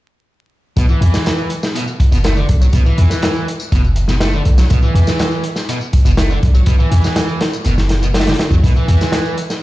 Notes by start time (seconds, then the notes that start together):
0.77 B1 B2, kick, closed hi-hat, tambourine
0.89 E3, tambourine
1.01 E2 E3, closed hi-hat
1.14 snare, tambourine
1.26 snare, closed hi-hat, tambourine
1.39 tambourine
1.50 closed hi-hat
1.63 snare, tambourine
1.75 B2, closed hi-hat, tambourine
1.87 tambourine
2.00 kick, closed hi-hat
2.12 F#1 B2, closed hi-hat, tambourine
2.24 A3, snare, closed hi-hat, tambourine
2.37 D3, tambourine
2.49 B1, kick, closed hi-hat
2.61 F#3, tambourine
2.73 B1 B2, kick, closed hi-hat, tambourine
2.86 E3, tambourine
2.98 E2 E3, closed hi-hat
3.10 snare, tambourine
3.22 snare, closed hi-hat, tambourine
3.35 tambourine
3.48 closed hi-hat
3.60 tambourine
3.72 F#1 B2, kick, closed hi-hat, tambourine
3.84 tambourine
3.96 closed hi-hat
4.08 B2, snare, tambourine
4.20 A3, snare, closed hi-hat, tambourine
4.33 D3, tambourine
4.45 B1, closed hi-hat
4.58 F#3, snare, tambourine
4.70 B1 B2, kick, closed hi-hat, tambourine
4.83 E3, tambourine
4.95 E2 E3, closed hi-hat
5.07 snare, tambourine
5.19 snare, closed hi-hat, tambourine
5.32 tambourine
5.44 closed hi-hat
5.56 snare, tambourine
5.69 B2, closed hi-hat, tambourine
5.81 tambourine
5.93 kick, closed hi-hat
6.05 F#1 B2, closed hi-hat, tambourine
6.17 A3, snare, closed hi-hat, tambourine
6.30 D3, tambourine
6.43 B1, kick, closed hi-hat
6.55 F#3, tambourine
6.66 B1 B2, kick, closed hi-hat, tambourine
6.79 E3, tambourine
6.91 E2 E3, closed hi-hat
7.04 snare, tambourine
7.16 snare, closed hi-hat, tambourine
7.29 tambourine
7.41 snare, closed hi-hat
7.53 tambourine
7.64 F#1 B2, closed hi-hat, tambourine
7.78 snare, tambourine
7.89 snare, closed hi-hat
8.02 B2, tambourine
8.14 A3, snare, closed hi-hat, tambourine
8.20 snare, closed hi-hat
8.27 D3, snare, closed hi-hat, tambourine
8.33 snare, closed hi-hat
8.39 snare, closed hi-hat
8.51 E2 F#3, kick, tambourine
8.63 B1 B2, kick, closed hi-hat, tambourine
8.76 E3, tambourine
8.88 E2 E3, closed hi-hat
9.01 snare, tambourine
9.12 snare, closed hi-hat, tambourine
9.25 tambourine
9.38 closed hi-hat
9.50 snare, tambourine